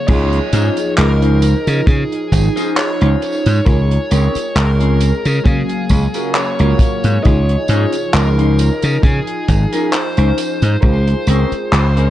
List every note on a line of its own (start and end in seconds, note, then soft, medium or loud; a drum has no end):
0.00 0.10 C#3 medium
0.00 0.10 C#4 medium
0.07 0.39 C#2 loud
0.07 3.62 F3 medium
0.07 3.62 D#4 medium
0.07 3.58 D#4 medium
0.07 3.59 F4 medium
0.07 3.59 G#4 loud
0.07 0.93 C#5 loud
0.07 3.58 D#5 medium
0.07 kick loud
0.07 closed hi-hat medium
0.07 crash loud
0.07 tambourine soft
0.33 closed hi-hat soft
0.53 0.69 G#2 loud
0.53 0.77 C#4 loud
0.53 0.77 D#4 medium
0.53 0.77 F4 loud
0.53 0.77 C5 loud
0.53 closed hi-hat loud
0.53 tambourine medium
0.77 closed hi-hat medium
0.77 tambourine soft
0.97 1.53 C#2 loud
0.97 1.87 A#4 loud
0.97 muted clean electric guitar stroke soft
0.97 clap loud
0.97 closed hi-hat medium
0.97 tambourine soft
1.21 1.54 C#4 medium
1.21 1.54 D#4 medium
1.21 1.55 F4 medium
1.21 1.55 C5 loud
1.21 closed hi-hat soft
1.42 closed hi-hat loud
1.42 tambourine medium
1.67 1.80 C#3 medium
1.67 closed hi-hat medium
1.67 tambourine soft
1.87 2.03 C#3 medium
1.87 2.80 G#4 loud
1.87 kick loud
1.87 closed hi-hat medium
1.87 tambourine soft
2.12 closed hi-hat soft
2.32 2.48 G#1 loud
2.32 kick medium
2.32 closed hi-hat loud
2.32 tambourine medium
2.56 2.77 C#4 medium
2.56 2.77 D#4 loud
2.56 2.77 F4 medium
2.56 2.77 C5 loud
2.56 closed hi-hat medium
2.56 tambourine soft
2.76 3.65 C#5 loud
2.76 clap loud
2.76 closed hi-hat medium
2.76 tambourine soft
3.01 3.15 C#2 medium
3.01 3.56 C#4 medium
3.01 3.56 D#4 medium
3.01 3.56 F4 medium
3.01 3.56 C5 loud
3.01 closed hi-hat soft
3.22 closed hi-hat loud
3.22 tambourine medium
3.46 3.59 G#2 medium
3.46 closed hi-hat medium
3.46 tambourine soft
3.65 3.97 C#2 loud
3.65 5.44 G#3 medium
3.65 5.38 F4 medium
3.65 5.38 G#4 medium
3.65 5.37 A#4 medium
3.65 4.58 C#5 loud
3.65 kick loud
3.65 closed hi-hat medium
3.65 tambourine soft
3.91 closed hi-hat soft
4.11 4.27 C#2 loud
4.11 4.35 C4 loud
4.11 4.35 C#4 loud
4.11 4.35 G#4 loud
4.11 4.35 A#4 loud
4.11 closed hi-hat loud
4.11 tambourine medium
4.35 muted slap bass stroke soft
4.35 closed hi-hat medium
4.35 tambourine soft
4.55 5.11 C#2 loud
4.55 5.44 A#4 loud
4.55 clap loud
4.55 closed hi-hat medium
4.55 tambourine soft
4.80 5.13 C4 medium
4.80 5.13 C#4 medium
4.80 5.13 G#4 medium
4.80 5.13 A#4 loud
4.80 closed hi-hat soft
5.00 closed hi-hat loud
5.00 tambourine medium
5.25 5.38 C#3 medium
5.25 closed hi-hat medium
5.25 tambourine soft
5.44 5.61 C#3 medium
5.44 7.23 C#3 medium
5.44 7.23 F#3 medium
5.44 7.17 F#3 medium
5.44 7.16 A#3 medium
5.44 7.23 A#3 medium
5.44 7.16 C#4 medium
5.44 6.37 G#4 loud
5.44 7.23 F5 medium
5.44 7.17 F5 medium
5.44 kick loud
5.44 closed hi-hat medium
5.44 tambourine soft
5.69 closed hi-hat medium
5.89 6.06 C#2 loud
5.89 kick medium
5.89 closed hi-hat loud
5.89 tambourine medium
6.14 6.35 C#4 loud
6.14 6.35 F4 loud
6.14 6.35 F#4 medium
6.14 6.35 A#4 loud
6.14 closed hi-hat medium
6.14 tambourine soft
6.34 7.22 C#5 loud
6.34 clap loud
6.34 closed hi-hat medium
6.34 tambourine soft
6.59 6.73 C#2 medium
6.59 7.14 C#4 medium
6.59 7.14 F4 medium
6.59 7.14 F#4 medium
6.59 7.14 A#4 medium
6.59 closed hi-hat soft
6.79 kick loud
6.79 closed hi-hat loud
6.79 tambourine medium
7.04 7.17 G#2 medium
7.04 closed hi-hat medium
7.04 tambourine soft
7.23 7.55 C#2 loud
7.23 10.79 F3 medium
7.23 10.74 D#4 medium
7.23 10.79 D#4 medium
7.23 10.75 F4 medium
7.23 10.75 G#4 loud
7.23 8.16 C#5 loud
7.23 10.74 D#5 medium
7.23 kick loud
7.23 closed hi-hat medium
7.23 tambourine soft
7.49 closed hi-hat soft
7.68 7.85 G#2 loud
7.68 7.94 C#4 loud
7.68 7.94 D#4 loud
7.68 7.94 F4 loud
7.68 7.94 C5 loud
7.68 closed hi-hat loud
7.68 tambourine medium
7.93 closed hi-hat medium
7.93 tambourine soft
8.14 8.69 C#2 loud
8.14 9.03 A#4 loud
8.14 muted clean electric guitar stroke soft
8.14 clap loud
8.14 closed hi-hat medium
8.14 tambourine soft
8.38 8.71 C#4 loud
8.38 8.71 D#4 medium
8.38 8.71 F4 medium
8.38 8.71 C5 medium
8.38 closed hi-hat soft
8.59 closed hi-hat loud
8.59 tambourine medium
8.83 8.97 C#3 medium
8.83 closed hi-hat medium
8.83 tambourine soft
9.03 9.19 C#3 medium
9.03 9.96 G#4 medium
9.03 kick loud
9.03 closed hi-hat medium
9.03 tambourine soft
9.27 closed hi-hat soft
9.48 9.64 G#1 loud
9.48 kick medium
9.48 closed hi-hat medium
9.48 tambourine medium
9.73 9.93 C#4 loud
9.73 9.93 D#4 medium
9.73 9.93 F4 loud
9.73 9.93 A#4 loud
9.73 closed hi-hat medium
9.73 tambourine soft
9.92 10.80 C5 loud
9.92 clap loud
9.92 closed hi-hat medium
9.92 tambourine soft
10.17 10.31 C#2 loud
10.17 10.73 C#4 medium
10.17 10.73 D#4 medium
10.17 10.73 F4 medium
10.17 10.73 C5 loud
10.17 closed hi-hat soft
10.38 closed hi-hat loud
10.38 tambourine medium
10.62 10.75 G#2 loud
10.62 closed hi-hat medium
10.62 tambourine soft
10.81 11.13 C#2 loud
10.81 12.10 G#3 medium
10.81 12.10 F4 medium
10.81 12.10 G#4 medium
10.81 12.10 A#4 medium
10.81 12.10 C5 loud
10.81 kick loud
10.81 closed hi-hat medium
10.81 tambourine soft
11.07 closed hi-hat soft
11.27 11.43 C#2 loud
11.27 11.52 C4 loud
11.27 11.52 C#4 loud
11.27 11.52 G#4 loud
11.27 11.52 A#4 loud
11.27 closed hi-hat loud
11.27 tambourine medium
11.52 muted slap bass stroke soft
11.52 closed hi-hat medium
11.52 tambourine soft
11.72 12.10 C#2 loud
11.72 muted clean electric guitar stroke soft
11.72 clap loud
11.72 closed hi-hat medium
11.72 tambourine soft
11.97 12.10 C4 medium
11.97 12.10 C#4 medium
11.97 12.10 G#4 medium
11.97 12.10 A#4 loud
11.97 closed hi-hat soft